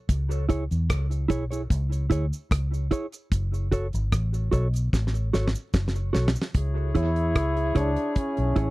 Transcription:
0.09 C#2, kick, closed hi-hat, cabasa
0.31 cabasa
0.49 E4 G#4 C#5, kick, closed hi-hat, cabasa
0.71 E2, closed hi-hat, cabasa
0.90 C#2, kick, cross-stick, closed hi-hat, cabasa
1.11 closed hi-hat, cabasa
1.28 B1 E4 G#4 C#5, kick, closed hi-hat, cabasa
1.51 E4 G#4 C#5, closed hi-hat, cabasa
1.70 C#2, kick, closed hi-hat, cabasa
1.92 closed hi-hat, cabasa
2.10 D2 E4 G#4 C#5, kick, closed hi-hat, cabasa
2.33 cabasa
2.51 C#2, kick, cross-stick, closed hi-hat, cabasa
2.74 cabasa
2.91 E4 G#4 C#5, kick, closed hi-hat, cabasa
3.12 closed hi-hat, cabasa
3.32 F#1, kick, closed hi-hat, cabasa
3.54 cabasa
3.72 F#4 A4 C#5, kick, closed hi-hat, cabasa
3.93 G#1, closed hi-hat, cabasa
4.12 A1, kick, cross-stick, closed hi-hat, cabasa
4.34 closed hi-hat, cabasa
4.51 B1 F#4 A4 C#5, kick, closed hi-hat, cabasa
4.74 closed hi-hat, cabasa
4.93 A1, kick, snare, cabasa
5.07 snare
5.15 cabasa
5.33 G#1 F#4 A4 C#5, snare, cabasa
5.48 snare
5.55 cabasa
5.74 F#1, kick, snare, cabasa
5.88 snare
5.96 cabasa
6.13 B1 F#4 A4 C#5, snare, cabasa
6.28 snare
6.35 cabasa
6.42 snare
6.54 C#2 E4 G#4 C#5, kick, closed hi-hat
6.95 E2 E4 G#4 C#5, kick, closed hi-hat
7.16 closed hi-hat
7.36 C#2, kick, cross-stick, closed hi-hat
7.57 closed hi-hat
7.75 C#2 D4 E4 G#4 C#5, kick, cross-stick, closed hi-hat
7.96 muted clean electric guitar stroke, closed hi-hat
8.16 C#4, kick, closed hi-hat
8.37 B1, closed hi-hat
8.56 A1 E4 G#4 C#5, kick, closed hi-hat

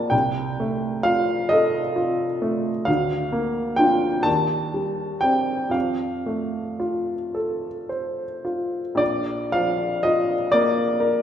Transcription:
Already playing: A#3 F4 A#4 D5 D#5 A5
0.10 C2 G5
0.60 A3
1.03 F4 F5
1.49 A4 D#5
1.96 F4
2.42 A3
2.85 D2 F5
3.32 A#3
3.76 D4 F4 G5
4.23 D#2 A5
4.74 G3
5.21 C4 G4 G5
5.69 F2 F5
6.26 A3
6.80 F4
7.34 A4
7.89 C5
8.45 F4
8.95 A#1 D5
9.52 F3 F5
10.03 F4 D#5
10.52 A#3 D5
11.00 A#4

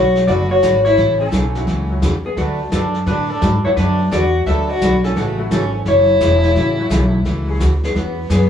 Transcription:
Already playing: B1 F#4 C#5
0.15 snare
0.27 F#1 D3 F#3 A3 B3 D4 F#4 B4 D5, brush sweep, kick, snare
0.50 F#4 C#5
0.62 G#1 D3 F#3 A3 D4 F#4 B4, kick, snare, hi-hat pedal
0.85 E4 C#5, snare
0.97 A1 C#3 E3 A3 C#4 F#4, brush sweep, kick, snare
1.20 C#4 A4
1.32 B1 C#3 E3 A3 C#4 F#4, kick, snare, hi-hat pedal
1.55 F#3 A3 C#4 E4 F#4, snare
1.67 C#2 C#3 E3 A3 C#4 F#4, brush sweep, kick, snare
1.89 F#3 A3 C#4 E4 F#4
2.02 E2 C#3 E3 A3 C#4 F#4, kick, snare, hi-hat pedal
2.25 B3 G#4
2.37 D2 D3 F#3 A3 D4 F#4 B4, brush sweep, kick, snare
2.72 F#2 D3 F#3 A3 D4 F#4 A4 B4, kick, snare, hi-hat pedal
2.94 snare
3.06 A2 D3 F#3 A3 D4 F#4 B4, brush sweep, kick, snare
3.30 D4 A4
3.42 G#2 D3 F#3 A3 D4 F#4 B4, kick, snare, hi-hat pedal
3.64 F#3 A3 B3 D4 E4 F#4 C#5, muted upright bass stroke
3.76 F#2 D3 F#3 A3 D4 F#4 B4, brush sweep, kick, snare
4.11 E2 D3 F#3 A3 D4 F#4 B4 D5, kick, snare, hi-hat pedal
4.45 D2 D3 F#3 A3 B3 D4 F#4 A4 B4 E5, brush sweep, kick, snare
4.69 F#4 D5
4.81 B1 D3 F#3 A3 D4 F#4 B4, kick, snare, hi-hat pedal
5.04 C#4 A4, snare
5.16 A1 C#3 E3 A3 C#4 F#4, brush sweep, kick, snare
5.37 F#3 A3 C#4 E4 F#4
5.51 G#1 C#3 E3 A3 C#4 F#4 A4, kick, snare, hi-hat pedal
5.85 F#1 C#3 E3 A3 C#4 E4 F#4 C#5, brush sweep, kick, snare
6.21 E1 C#3 E3 A3 C#4 F#4, kick, snare, hi-hat pedal
6.43 snare
6.55 A1 C#3 E3 A3 C#4 F#4, brush sweep, kick, snare
6.78 F#3 A3 C#4 E4 F#4
6.90 B1 C#3 E3 A3 C#4 F#4, kick, snare, hi-hat pedal
7.25 C#2 C#3 E3 A3 C#4 F#4, brush sweep, kick, snare
7.47 F#3 A3 C#4 E4 G#4
7.60 D2 C#3 E3 A3 C#4 F#4, kick, snare, hi-hat pedal
7.83 B3 G#4, snare
7.95 E2 E3 B3 C#4 F#4 G#4, brush sweep, kick, snare
8.30 F#2 E3 B3 C#4 G#4, kick, snare, hi-hat pedal
8.42 snare

